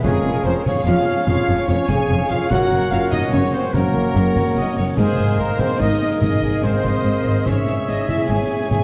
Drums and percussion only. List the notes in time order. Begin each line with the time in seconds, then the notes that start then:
0.04 concert bass drum, snare
0.66 concert bass drum, snare
1.27 concert bass drum, snare
1.68 snare
1.88 concert bass drum, snare
2.50 concert bass drum, snare
2.71 snare
2.92 snare
3.12 concert bass drum, snare
3.74 concert bass drum, snare
4.15 snare
4.36 concert bass drum, snare
4.97 concert bass drum, snare, crash
5.59 concert bass drum, snare
6.22 concert bass drum, snare
6.63 snare
6.85 concert bass drum, snare
7.46 concert bass drum, snare
7.66 snare
7.88 snare
8.09 concert bass drum, snare
8.71 concert bass drum, snare